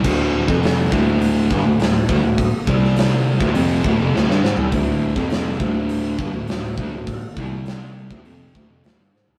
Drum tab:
CC |x---------------|----------------|----------------|----------------|
HH |----o---o---o---|o---o---o-------|o---o---o---o---|o---o---o---o---|
SD |---oo-------o---|---oo-------ooo-|---oo-------o---|----o-------o-o-|
FT |----------------|---------------o|----------------|---------------o|
BD |o--o--o---o---o-|o-o----o--o-----|o--o--o---o---o-|o-o----o--o-----|